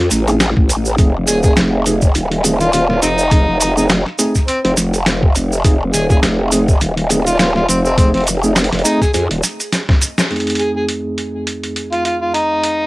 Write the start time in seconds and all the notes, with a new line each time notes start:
0.11 A1, snare, closed hi-hat, cabasa
0.27 A3 C4 D#4 G#4, closed hi-hat, cabasa
0.40 snare, closed hi-hat, cabasa
0.57 A1, kick
0.69 closed hi-hat, cabasa
0.85 cabasa
0.98 F1 A3 C4 D#4 G#4, kick, closed hi-hat, cabasa
1.27 D#1 G#4, closed hi-hat, cabasa
1.43 A3 C4 D#4 G#4, kick, cabasa
1.57 F1, snare, closed hi-hat, cabasa
1.86 A3 C4 D#4 G#4, closed hi-hat, cabasa
2.02 kick, cabasa
2.15 D#1, closed hi-hat, cabasa
2.32 closed hi-hat
2.44 A3 C4 D#4 G#4, closed hi-hat, cabasa
2.61 F4, closed hi-hat, cabasa
2.73 F4, closed hi-hat, cabasa
2.89 F4, snare
3.02 F1 C4 D#4, closed hi-hat, cabasa
3.19 cabasa
3.31 A3 C4 D#4 G#4, kick, closed hi-hat, cabasa
3.48 F1
3.60 D#4, closed hi-hat, cabasa
3.77 A3 C4 D#4 G#4, cabasa
3.89 snare, closed hi-hat, cabasa
4.06 snare
4.19 A3 C4 D#4 G#4, closed hi-hat, cabasa
4.35 kick, snare, cabasa
4.48 C4, closed hi-hat, cabasa
4.64 F1 C4, closed hi-hat
4.77 F1, snare, closed hi-hat, cabasa
4.94 closed hi-hat, cabasa
5.06 snare, closed hi-hat, cabasa
5.23 kick
5.35 closed hi-hat, cabasa
5.53 cabasa
5.64 F1 A3 C4 D#4 G#4, kick, closed hi-hat, cabasa
5.93 D#1 G#4, closed hi-hat, cabasa
6.10 A3 C4 D#4 G#4, kick, cabasa
6.23 F1, snare, closed hi-hat, cabasa
6.52 A3 C4 D#4 G#4, closed hi-hat, cabasa
6.68 kick, cabasa
6.81 D#1, closed hi-hat, cabasa
6.97 closed hi-hat
7.10 A3 C4 D#4 G#4, closed hi-hat, cabasa
7.27 F4, closed hi-hat, cabasa
7.39 F4, snare, closed hi-hat, cabasa
7.56 F4, snare
7.68 F1 C4, closed hi-hat, cabasa
7.85 C4, cabasa
7.97 A3 C4 D#4 G#4, kick, closed hi-hat, cabasa
8.14 F1 C4, closed hi-hat
8.17 closed hi-hat
8.20 closed hi-hat
8.24 closed hi-hat
8.27 closed hi-hat, cabasa
8.31 closed hi-hat
8.35 closed hi-hat
8.39 closed hi-hat
8.43 A3 C4 D#4 G#4, cabasa
8.56 snare, closed hi-hat, cabasa
8.64 closed hi-hat
8.72 F1, snare, closed hi-hat
8.79 closed hi-hat
8.85 A3 C4 D#4 G#4, closed hi-hat, cabasa
9.02 G#4, kick, snare, cabasa
9.14 F2 G#4, closed hi-hat, cabasa
9.31 D#1, closed hi-hat
9.43 snare, closed hi-hat, cabasa
9.60 closed hi-hat, cabasa
9.72 snare, closed hi-hat, cabasa
9.89 kick, snare
10.02 closed hi-hat, cabasa
10.18 snare, cabasa
10.30 F2 A3 C4 D#4 G#4, closed hi-hat
10.36 closed hi-hat
10.40 closed hi-hat
10.47 closed hi-hat
10.50 closed hi-hat
10.55 closed hi-hat
10.60 G#4, closed hi-hat
10.76 G#4
10.89 closed hi-hat
11.18 closed hi-hat
11.47 closed hi-hat
11.64 closed hi-hat
11.76 closed hi-hat
11.93 F4, closed hi-hat
12.05 F4, closed hi-hat
12.22 F4
12.34 D#4, closed hi-hat
12.64 closed hi-hat